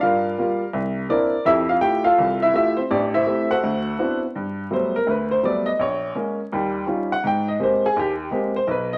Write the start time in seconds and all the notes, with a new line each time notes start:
0.01 G2 F4 A#4 D5 F5
0.38 G3 A#3 F4
0.73 C2
1.09 A#3 C4 D4 E4 A#4 D5
1.45 F2 E4 G4 A4 E5
1.69 F4 F5
1.81 A3 E4 F4 G4 G5
2.04 F4 A4 F5
2.18 C2 E3
2.42 E4 E5
2.54 A3 E4 F4 G4 E5
2.77 C4 C5
2.91 A1 D4 G4 D5
3.14 E4 C5 E5
3.27 A3 C4 G4
3.51 F#4 A4 C5 F#5
3.64 D2
3.98 B3 C4 D4 E4 F#4
4.35 G2
4.71 F#3 G3 A3 B3 C5
4.96 A#4
5.07 D2 B4
5.31 C5
5.43 F#3 G3 A3 B3 D5
5.66 D#5
5.79 A#1 C#5
6.15 G#3 A#3 C#4
6.52 D#2 G3
6.87 G3 C#4 D#4 F4
7.12 F#5
7.24 G#2 G5
7.48 D#5
7.59 G#3 A#3 C4 G4 C5
7.86 G#4
7.96 D#2 G4
8.31 G#3 A#3 C4 G4
8.56 C5
8.67 B1 B4
8.93 D#5